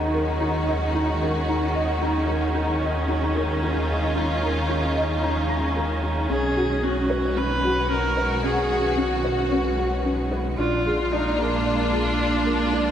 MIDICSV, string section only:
0, 0, Header, 1, 2, 480
1, 0, Start_track
1, 0, Key_signature, -6, "minor"
1, 0, Tempo, 535714
1, 1801, Time_signature, 4, 2, 24, 8
1, 11569, End_track
2, 0, Start_track
2, 0, Title_t, "String section"
2, 0, Program_c, 0, 48
2, 0, Note_on_c, 0, 51, 57
2, 0, Note_on_c, 0, 56, 75
2, 0, Note_on_c, 0, 61, 68
2, 0, Note_on_c, 0, 66, 58
2, 3203, Note_on_c, 0, 65, 60
2, 3346, Note_off_c, 0, 66, 0
2, 5640, Note_off_c, 0, 56, 0
2, 5642, Note_off_c, 0, 65, 0
2, 5928, Note_on_c, 0, 56, 60
2, 6887, Note_on_c, 0, 66, 74
2, 9480, Note_off_c, 0, 51, 0
2, 9482, Note_off_c, 0, 61, 0
2, 9483, Note_off_c, 0, 66, 0
2, 9694, Note_on_c, 0, 65, 74
2, 9742, Note_on_c, 0, 62, 64
2, 10016, Note_on_c, 0, 58, 77
2, 11569, Note_off_c, 0, 56, 0
2, 11569, Note_off_c, 0, 58, 0
2, 11569, Note_off_c, 0, 62, 0
2, 11569, Note_off_c, 0, 65, 0
2, 11569, End_track
0, 0, End_of_file